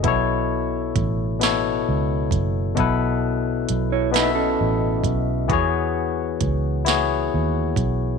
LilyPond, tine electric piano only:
\new Staff \with { instrumentName = "Tine electric piano" } { \time 6/8 \key b \dorian \tempo 4. = 44 <b, b e' a' cis''>4. <b, b e' a' cis''>4. | <b, b e' a' b'>4. <b, b e' a' dis'' e''>4. | <e b fis' gis' cis''>4. <b e' fis' gis' cis''>4. | }